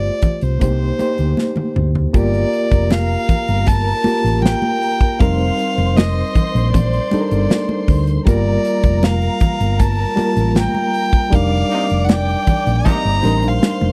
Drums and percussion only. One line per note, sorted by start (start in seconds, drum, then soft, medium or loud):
0.22 kick medium
0.22 closed hi-hat medium
0.22 low conga medium
0.41 closed hi-hat soft
0.61 kick medium
0.61 closed hi-hat medium
0.61 muted conga soft
0.99 closed hi-hat medium
0.99 muted conga soft
1.18 closed hi-hat soft
1.37 snare soft
1.37 high conga medium
1.56 high tom medium
1.56 high conga medium
1.76 mid tom medium
1.95 floor tom medium
2.14 kick loud
2.14 closed hi-hat medium
2.14 muted conga soft
2.34 closed hi-hat soft
2.53 closed hi-hat medium
2.71 kick medium
2.71 closed hi-hat soft
2.91 snare loud
2.91 closed hi-hat medium
2.91 high conga medium
3.29 kick medium
3.29 closed hi-hat medium
3.29 low conga medium
3.48 closed hi-hat medium
3.67 kick medium
3.67 closed hi-hat medium
3.67 muted conga soft
4.04 closed hi-hat medium
4.04 muted conga soft
4.26 closed hi-hat soft
4.43 snare medium
4.43 closed hi-hat medium
4.43 high conga medium
4.62 high conga medium
4.82 open hi-hat medium
5.01 kick medium
5.01 closed hi-hat medium
5.20 kick loud
5.20 closed hi-hat medium
5.20 muted conga soft
5.59 closed hi-hat medium
5.78 closed hi-hat soft
5.97 snare loud
5.97 closed hi-hat medium
5.97 high conga medium
6.35 kick medium
6.35 closed hi-hat medium
6.35 low conga medium
6.56 closed hi-hat medium
6.74 kick medium
6.74 closed hi-hat medium
6.74 muted conga soft
6.74 low conga medium
6.93 closed hi-hat soft
7.11 closed hi-hat medium
7.11 muted conga soft
7.31 closed hi-hat medium
7.50 snare loud
7.50 closed hi-hat medium
7.50 high conga medium
7.69 high conga medium
7.88 kick medium
7.88 open hi-hat medium
8.07 closed hi-hat medium
8.27 kick loud
8.27 closed hi-hat medium
8.27 muted conga soft
8.65 closed hi-hat medium
8.83 kick medium
8.83 closed hi-hat soft
9.03 snare loud
9.03 closed hi-hat medium
9.03 high conga medium
9.22 closed hi-hat soft
9.40 kick loud
9.40 closed hi-hat medium
9.40 low conga medium
9.61 closed hi-hat medium
9.80 kick medium
9.80 closed hi-hat medium
9.80 muted conga soft
10.17 closed hi-hat medium
10.17 muted conga soft
10.37 closed hi-hat medium
10.56 snare loud
10.56 closed hi-hat medium
10.56 high conga medium
10.75 high conga medium
10.94 open hi-hat medium
11.13 kick medium
11.13 closed hi-hat soft
11.32 kick loud
11.32 closed hi-hat medium
11.32 muted conga soft
11.71 closed hi-hat medium
11.90 closed hi-hat soft
12.09 snare loud
12.09 closed hi-hat medium
12.09 high conga medium
12.29 closed hi-hat soft
12.47 kick medium
12.47 closed hi-hat medium
12.47 low conga medium
12.67 closed hi-hat soft
12.86 kick medium
12.86 closed hi-hat medium
12.86 muted conga medium
12.86 low conga medium
13.24 snare soft
13.24 closed hi-hat medium
13.24 muted conga soft
13.43 closed hi-hat soft
13.63 snare loud
13.63 closed hi-hat medium
13.63 high conga medium
13.81 high conga medium